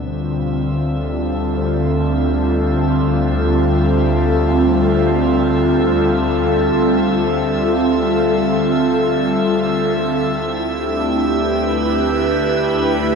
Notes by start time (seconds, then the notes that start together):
Already playing: D2 D3 G3 C4 E5 E6
0.05 F4
0.79 A4
10.29 D2 E4
10.57 D4
10.62 G4
10.66 A3
11.36 B4